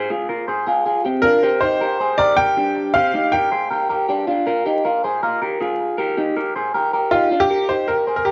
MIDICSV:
0, 0, Header, 1, 3, 480
1, 0, Start_track
1, 0, Key_signature, -3, "major"
1, 0, Tempo, 379747
1, 1804, Time_signature, 4, 2, 24, 8
1, 10511, End_track
2, 0, Start_track
2, 0, Title_t, "Upright piano"
2, 0, Program_c, 0, 0
2, 1539, Note_on_c, 0, 70, 91
2, 2028, Note_on_c, 0, 72, 86
2, 2047, Note_off_c, 0, 70, 0
2, 2753, Note_on_c, 0, 74, 97
2, 2779, Note_off_c, 0, 72, 0
2, 2991, Note_on_c, 0, 79, 103
2, 3007, Note_off_c, 0, 74, 0
2, 3713, Note_on_c, 0, 77, 100
2, 3740, Note_off_c, 0, 79, 0
2, 4198, Note_on_c, 0, 79, 84
2, 4214, Note_off_c, 0, 77, 0
2, 4870, Note_off_c, 0, 79, 0
2, 8990, Note_on_c, 0, 65, 82
2, 9355, Note_on_c, 0, 67, 111
2, 9365, Note_off_c, 0, 65, 0
2, 9718, Note_on_c, 0, 72, 78
2, 9727, Note_off_c, 0, 67, 0
2, 9956, Note_on_c, 0, 70, 68
2, 9965, Note_off_c, 0, 72, 0
2, 10299, Note_off_c, 0, 70, 0
2, 10318, Note_on_c, 0, 70, 71
2, 10429, Note_on_c, 0, 67, 80
2, 10442, Note_off_c, 0, 70, 0
2, 10511, Note_off_c, 0, 67, 0
2, 10511, End_track
3, 0, Start_track
3, 0, Title_t, "Clean electric guitar"
3, 0, Program_c, 1, 27
3, 128, Note_on_c, 1, 68, 85
3, 139, Note_on_c, 1, 65, 62
3, 360, Note_off_c, 1, 65, 0
3, 365, Note_off_c, 1, 68, 0
3, 366, Note_on_c, 1, 70, 79
3, 376, Note_on_c, 1, 65, 56
3, 600, Note_off_c, 1, 70, 0
3, 605, Note_on_c, 1, 72, 74
3, 609, Note_off_c, 1, 65, 0
3, 615, Note_on_c, 1, 68, 58
3, 829, Note_off_c, 1, 68, 0
3, 844, Note_off_c, 1, 72, 0
3, 844, Note_on_c, 1, 68, 86
3, 855, Note_on_c, 1, 65, 67
3, 1069, Note_off_c, 1, 68, 0
3, 1079, Note_off_c, 1, 65, 0
3, 1084, Note_on_c, 1, 68, 75
3, 1094, Note_on_c, 1, 65, 54
3, 1318, Note_off_c, 1, 68, 0
3, 1323, Note_on_c, 1, 67, 83
3, 1329, Note_off_c, 1, 65, 0
3, 1334, Note_on_c, 1, 60, 64
3, 1559, Note_off_c, 1, 67, 0
3, 1564, Note_on_c, 1, 65, 69
3, 1569, Note_off_c, 1, 60, 0
3, 1575, Note_on_c, 1, 62, 58
3, 1804, Note_off_c, 1, 65, 0
3, 1805, Note_on_c, 1, 72, 96
3, 1810, Note_off_c, 1, 62, 0
3, 1816, Note_on_c, 1, 67, 71
3, 2031, Note_off_c, 1, 67, 0
3, 2045, Note_off_c, 1, 72, 0
3, 2047, Note_on_c, 1, 67, 70
3, 2056, Note_on_c, 1, 63, 58
3, 2286, Note_off_c, 1, 67, 0
3, 2288, Note_on_c, 1, 70, 76
3, 2290, Note_off_c, 1, 63, 0
3, 2300, Note_on_c, 1, 67, 67
3, 2523, Note_off_c, 1, 70, 0
3, 2528, Note_on_c, 1, 72, 75
3, 2532, Note_off_c, 1, 67, 0
3, 2539, Note_on_c, 1, 68, 64
3, 2762, Note_off_c, 1, 72, 0
3, 2767, Note_on_c, 1, 70, 93
3, 2770, Note_off_c, 1, 68, 0
3, 2775, Note_on_c, 1, 67, 69
3, 2989, Note_off_c, 1, 70, 0
3, 2999, Note_off_c, 1, 67, 0
3, 3004, Note_on_c, 1, 70, 75
3, 3015, Note_on_c, 1, 67, 57
3, 3232, Note_off_c, 1, 67, 0
3, 3245, Note_off_c, 1, 70, 0
3, 3247, Note_on_c, 1, 67, 78
3, 3257, Note_on_c, 1, 62, 59
3, 3697, Note_off_c, 1, 67, 0
3, 3702, Note_off_c, 1, 62, 0
3, 3725, Note_on_c, 1, 72, 100
3, 3738, Note_on_c, 1, 67, 77
3, 3951, Note_off_c, 1, 67, 0
3, 3965, Note_off_c, 1, 72, 0
3, 3966, Note_on_c, 1, 67, 84
3, 3978, Note_on_c, 1, 63, 64
3, 4206, Note_off_c, 1, 67, 0
3, 4211, Note_off_c, 1, 63, 0
3, 4211, Note_on_c, 1, 70, 81
3, 4220, Note_on_c, 1, 67, 58
3, 4443, Note_off_c, 1, 70, 0
3, 4449, Note_on_c, 1, 72, 77
3, 4451, Note_off_c, 1, 67, 0
3, 4456, Note_on_c, 1, 68, 54
3, 4679, Note_off_c, 1, 72, 0
3, 4684, Note_on_c, 1, 70, 81
3, 4689, Note_off_c, 1, 68, 0
3, 4694, Note_on_c, 1, 67, 72
3, 4908, Note_off_c, 1, 70, 0
3, 4916, Note_off_c, 1, 67, 0
3, 4923, Note_on_c, 1, 70, 71
3, 4932, Note_on_c, 1, 67, 65
3, 5150, Note_off_c, 1, 67, 0
3, 5163, Note_off_c, 1, 70, 0
3, 5165, Note_on_c, 1, 67, 83
3, 5176, Note_on_c, 1, 62, 64
3, 5394, Note_off_c, 1, 62, 0
3, 5395, Note_off_c, 1, 67, 0
3, 5400, Note_on_c, 1, 65, 84
3, 5409, Note_on_c, 1, 62, 57
3, 5638, Note_off_c, 1, 65, 0
3, 5644, Note_on_c, 1, 70, 105
3, 5646, Note_off_c, 1, 62, 0
3, 5654, Note_on_c, 1, 65, 83
3, 5879, Note_off_c, 1, 65, 0
3, 5884, Note_off_c, 1, 70, 0
3, 5884, Note_on_c, 1, 67, 72
3, 5892, Note_on_c, 1, 63, 65
3, 6123, Note_off_c, 1, 67, 0
3, 6127, Note_off_c, 1, 63, 0
3, 6127, Note_on_c, 1, 70, 81
3, 6138, Note_on_c, 1, 65, 67
3, 6364, Note_off_c, 1, 70, 0
3, 6370, Note_off_c, 1, 65, 0
3, 6371, Note_on_c, 1, 72, 77
3, 6379, Note_on_c, 1, 68, 63
3, 6604, Note_off_c, 1, 72, 0
3, 6609, Note_on_c, 1, 70, 90
3, 6610, Note_off_c, 1, 68, 0
3, 6620, Note_on_c, 1, 65, 70
3, 6831, Note_off_c, 1, 70, 0
3, 6846, Note_on_c, 1, 70, 76
3, 6850, Note_off_c, 1, 65, 0
3, 6856, Note_on_c, 1, 67, 62
3, 7079, Note_off_c, 1, 67, 0
3, 7083, Note_off_c, 1, 70, 0
3, 7084, Note_on_c, 1, 68, 76
3, 7094, Note_on_c, 1, 65, 62
3, 7533, Note_off_c, 1, 68, 0
3, 7538, Note_off_c, 1, 65, 0
3, 7561, Note_on_c, 1, 70, 90
3, 7573, Note_on_c, 1, 67, 73
3, 7788, Note_off_c, 1, 67, 0
3, 7800, Note_off_c, 1, 70, 0
3, 7803, Note_on_c, 1, 67, 81
3, 7813, Note_on_c, 1, 63, 63
3, 8041, Note_off_c, 1, 67, 0
3, 8045, Note_on_c, 1, 70, 77
3, 8046, Note_off_c, 1, 63, 0
3, 8055, Note_on_c, 1, 67, 58
3, 8282, Note_off_c, 1, 70, 0
3, 8287, Note_off_c, 1, 67, 0
3, 8288, Note_on_c, 1, 72, 73
3, 8298, Note_on_c, 1, 68, 57
3, 8519, Note_off_c, 1, 72, 0
3, 8524, Note_on_c, 1, 70, 88
3, 8528, Note_off_c, 1, 68, 0
3, 8535, Note_on_c, 1, 67, 68
3, 8750, Note_off_c, 1, 70, 0
3, 8758, Note_off_c, 1, 67, 0
3, 8765, Note_on_c, 1, 70, 77
3, 8773, Note_on_c, 1, 67, 57
3, 8988, Note_off_c, 1, 67, 0
3, 9001, Note_off_c, 1, 70, 0
3, 9003, Note_on_c, 1, 67, 80
3, 9014, Note_on_c, 1, 63, 64
3, 9237, Note_off_c, 1, 67, 0
3, 9242, Note_on_c, 1, 65, 74
3, 9246, Note_off_c, 1, 63, 0
3, 9253, Note_on_c, 1, 62, 58
3, 9480, Note_off_c, 1, 65, 0
3, 9481, Note_on_c, 1, 70, 81
3, 9486, Note_off_c, 1, 62, 0
3, 9491, Note_on_c, 1, 67, 63
3, 9711, Note_off_c, 1, 67, 0
3, 9719, Note_off_c, 1, 70, 0
3, 9726, Note_on_c, 1, 67, 58
3, 9735, Note_on_c, 1, 63, 44
3, 9956, Note_off_c, 1, 67, 0
3, 9962, Note_on_c, 1, 70, 65
3, 9967, Note_off_c, 1, 63, 0
3, 9971, Note_on_c, 1, 67, 51
3, 10198, Note_off_c, 1, 70, 0
3, 10203, Note_on_c, 1, 72, 63
3, 10205, Note_off_c, 1, 67, 0
3, 10214, Note_on_c, 1, 68, 48
3, 10436, Note_off_c, 1, 72, 0
3, 10441, Note_on_c, 1, 70, 74
3, 10446, Note_off_c, 1, 68, 0
3, 10451, Note_on_c, 1, 67, 60
3, 10511, Note_off_c, 1, 67, 0
3, 10511, Note_off_c, 1, 70, 0
3, 10511, End_track
0, 0, End_of_file